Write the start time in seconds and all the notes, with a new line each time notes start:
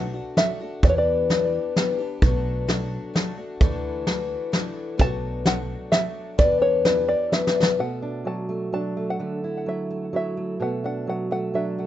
Already playing: B1 F#3 A3 D4 F#4 F#5
0.14 A3 D4 F#4
0.37 F#3 A3 D4 F#4 E5, snare, closed hi-hat
0.60 A3 D4 F#4
0.83 E2 E3 B3 D4 G4 D5, kick, closed hi-hat
0.90 C#5
0.98 D5
1.29 E3 B3 D4 G4, snare, closed hi-hat
1.76 E3 B3 D4 G4, snare, closed hi-hat
1.98 B3 D4 G4
2.22 B1 B2 F#3 A3 D4 F#4, kick, closed hi-hat
2.68 F#3 A3 D4 F#4, snare, closed hi-hat
3.14 F#3 A3 D4 F#4, snare, closed hi-hat
3.36 A3 D4 F#4
3.61 D2 D3 E3 A3 D4 F#4, kick, closed hi-hat
4.07 E3 A3 D4 F#4, snare, closed hi-hat
4.52 E3 A3 D4 F#4, snare, closed hi-hat
4.98 B1 B2 F#3 A3 D4 F#4 A5, kick, closed hi-hat
5.45 F#3 A3 D4 F#4 F#5, snare, closed hi-hat
5.92 F#3 A3 D4 F#4 E5, snare, closed hi-hat
6.38 E2 E3 B3 D4 G4 D5, kick, closed hi-hat
6.62 C#5
6.85 E3 B3 D4 G4 B4, snare, closed hi-hat
7.08 D5
7.32 E3 B3 D4 G4 E5, snare
7.47 snare
7.63 snare
7.79 B2 A3 F#5
8.02 D4
8.25 F#3 A5
8.49 A3
8.72 F#3 D4 A5
8.97 A3
9.10 F#5
9.19 D3 A3
9.44 E4
9.66 F#3 E5
9.90 A3
10.13 F#3 E4 E5
10.37 A3
10.60 B2 A3 F#5
10.84 D4 F#5
11.07 F#3 F#5
11.31 A3 F#5
11.54 F#3 D4 E5
11.78 A3